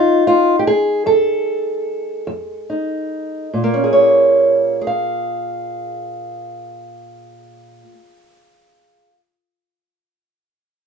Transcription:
Already playing: F2 G#3 D#4 F4
0.27 F4
0.59 G4
0.67 G#4
1.06 F2 A4
2.27 F2
2.70 D#4
3.54 A#2
3.64 A#3
3.74 C#4
3.84 G#4
3.93 C#5
4.81 G#4
4.87 F5

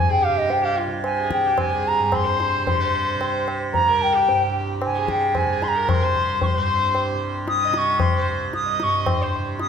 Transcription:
Already playing: C2 G2 C3 G#5
0.09 G#4 G5
0.22 G4 F5
0.28 C3
0.37 D#5
0.50 G5, tabla tin
0.63 G4 F5
0.77 F4
0.87 C3
1.04 G#5, tabla na
1.18 G#4
1.31 G5, tabla ke
1.42 C2 G4
1.58 G#5, tabla na, tabla ge
1.71 G#4
1.87 A#5
2.00 G2
2.12 C6, tabla na, tabla ge
2.25 C5
2.40 tabla te
2.58 C3
2.67 C6, tabla tin, tabla ge
2.80 C5
3.15 C3
3.21 tabla na
3.48 tabla na
3.71 C2 A#5, tabla tin, tabla ge
3.88 A#4
4.02 G5
4.14 G4
4.29 G2, tabla tin
4.82 G#5, tabla na
4.87 C3
4.95 G#4
5.08 G5, tabla ke
5.35 G#5, tabla na, tabla ge
5.44 C3
5.49 G#4
5.62 C6, tabla te
5.68 A#5
5.75 A#4
5.89 C6 C#6, tabla na, tabla ge
6.01 C2 C5
6.15 tabla ge
6.41 C6 C#6, tabla tin, tabla ge
6.56 G2 C5
6.95 tabla na
7.14 C3
7.48 D#6, tabla te
7.61 D#5
7.71 C3 D#6, tabla te
7.77 C#6
8.00 C6, tabla na, tabla ge
8.15 C5
8.27 C2
8.53 D#6, tabla te
8.67 D#5
8.80 G2 C#6, tabla te
9.02 C#6
9.06 C6, tabla na, tabla ge
9.22 C5
9.39 C3
9.59 D#6, tabla te

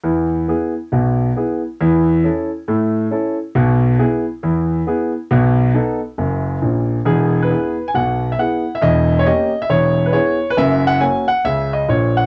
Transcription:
0.04 E2 E3
0.48 B3 E4 G#4
0.92 B1 B2
1.36 B3 E4 G#4
1.81 E2 E3
2.24 C#4 E4 A4
2.68 A2 A3
3.11 C#4 E4 A4
3.55 B1 B2
3.99 B3 E4 G#4
4.43 E2 E3
4.87 B3 E4 G#4
5.31 B1 B2
5.74 B3 D#4 A4
6.18 F#1 F#2
6.62 A#1 A#2
7.05 E1 E2 G#4
7.42 B4
7.51 B3 E4 G#4
7.88 G#5
7.94 B1 B2 F#5
8.32 E5
8.39 B3 E4 G#4 F#5
8.75 E5
8.82 E1 E2 D#5
9.19 C#5
9.25 A#3 C#4 G4 D#5
9.62 E5
9.69 E1 E2 C#5
10.06 B4
10.12 B3 E4 G#4 C#5
10.50 B4
10.57 F#1 F#2 E5
10.87 F#5
11.00 A#3 C#4 F#4 G#5
11.28 F#5
11.44 C#2 C#3 E5
11.73 D#5
11.88 A#1 A#2 C#5
12.17 F#5

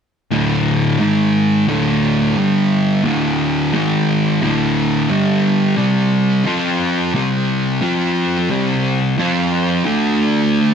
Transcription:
0.31 D2 A2 D3
0.99 G#2 D#3 G#3
1.67 D2 A2 D3
2.36 G2 D3 G3
3.04 D2 A2 D3
3.73 G#2 D#3 G#3
4.41 D2 A2 D3
5.09 G2 D3 G3
5.77 C3 G3 C4
6.46 F3 C4 F4
7.14 C3 G3 C4
7.82 F3 C4 F4
8.50 C3 G3 C4
9.18 F3 C4 F4
9.85 D3 A3 D4

